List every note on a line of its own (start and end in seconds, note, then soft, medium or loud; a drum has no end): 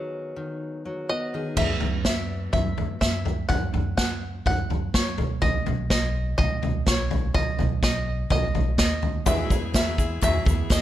0.00 0.35 D#3 medium
0.00 0.84 F#3 medium
0.00 1.08 B3 soft
0.00 1.33 G#4 medium
0.00 1.06 B4 medium
0.36 1.30 D#3 medium
0.85 3.26 F#3 soft
1.09 3.26 B3 soft
1.09 1.54 D#5 medium
1.34 1.55 D#3 medium
1.34 1.58 G#4 medium
1.57 1.79 F#2 medium
1.57 2.05 E5 medium
1.57 kick soft
1.57 floor tom medium
1.57 crash medium
1.80 2.50 F#2 medium
1.80 floor tom medium
2.05 2.52 E5 medium
2.05 kick soft
2.05 snare medium
2.53 2.76 F#2 loud
2.53 2.98 E5 medium
2.53 kick soft
2.53 floor tom loud
2.78 3.00 F#2 medium
2.78 floor tom medium
3.01 3.46 F#2 medium
3.01 3.46 E5 medium
3.01 kick soft
3.01 snare medium
3.25 floor tom medium
3.49 3.72 F#2 medium
3.49 3.96 F#5 medium
3.49 kick soft
3.49 floor tom medium
3.74 4.42 F#2 medium
3.74 floor tom medium
3.97 4.46 F#5 medium
3.97 kick medium
3.97 snare medium
4.46 4.68 F#2 medium
4.46 4.94 F#5 medium
4.46 kick medium
4.46 floor tom medium
4.70 4.93 F#2 medium
4.70 floor tom medium
4.94 5.16 F#2 medium
4.94 5.41 C#5 medium
4.94 kick medium
4.94 snare medium
5.18 5.63 B1 medium
5.18 floor tom medium
5.42 5.90 D#5 medium
5.42 kick medium
5.42 floor tom medium
5.66 6.35 B1 loud
5.66 floor tom medium
5.90 6.36 D#5 medium
5.90 kick medium
5.90 snare medium
6.38 6.61 B1 medium
6.38 6.87 D#5 medium
6.38 kick medium
6.38 floor tom medium
6.63 6.85 B1 medium
6.63 floor tom medium
6.87 7.31 B1 medium
6.87 7.32 C#5 medium
6.87 kick medium
6.87 snare loud
7.11 floor tom medium
7.34 7.57 B1 medium
7.34 7.82 D#5 medium
7.34 kick medium
7.34 floor tom loud
7.59 8.28 B1 loud
7.59 floor tom medium
7.83 8.31 D#5 medium
7.83 kick medium
7.83 snare medium
8.30 8.53 B1 medium
8.30 8.78 D#5 medium
8.30 kick medium
8.30 floor tom loud
8.55 8.77 B1 medium
8.55 floor tom medium
8.78 9.23 D#2 medium
8.78 9.27 D#5 medium
8.78 kick medium
8.78 snare loud
9.02 floor tom medium
9.25 10.82 E2 medium
9.25 9.49 E2 medium
9.25 10.82 E3 medium
9.25 9.51 E3 medium
9.25 9.51 F#3 medium
9.25 10.82 G#3 medium
9.25 9.51 B3 medium
9.25 10.82 E4 medium
9.25 9.51 E4 medium
9.25 10.82 F#4 medium
9.25 9.49 G#4 medium
9.25 10.82 B4 medium
9.25 9.75 E5 medium
9.25 kick medium
9.25 floor tom loud
9.25 shaker medium
9.50 10.19 E2 loud
9.50 9.74 B3 soft
9.50 9.75 E4 medium
9.50 9.75 G#4 medium
9.50 kick medium
9.50 floor tom medium
9.50 shaker medium
9.74 9.98 F#3 medium
9.74 9.99 B3 medium
9.74 9.98 E4 medium
9.74 9.97 G#4 medium
9.74 10.23 E5 medium
9.74 kick medium
9.74 snare loud
9.74 shaker medium
9.98 10.21 B3 soft
9.98 10.22 E4 soft
9.98 10.22 G#4 medium
9.98 kick medium
9.98 shaker medium
10.21 10.45 E2 loud
10.21 10.46 E3 medium
10.21 10.47 F#3 medium
10.21 10.47 B3 medium
10.21 10.46 E4 medium
10.21 10.44 G#4 medium
10.21 10.68 E5 medium
10.21 kick medium
10.21 floor tom medium
10.21 shaker medium
10.45 10.69 E2 medium
10.45 10.70 B3 soft
10.45 10.71 E4 soft
10.45 10.70 G#4 soft
10.45 kick medium
10.45 floor tom medium
10.45 shaker medium
10.70 10.82 E2 medium
10.70 10.82 F#3 medium
10.70 10.82 B3 medium
10.70 10.82 E4 medium
10.70 10.82 G#4 medium
10.70 10.82 D#5 medium
10.70 kick medium
10.70 snare loud
10.70 shaker medium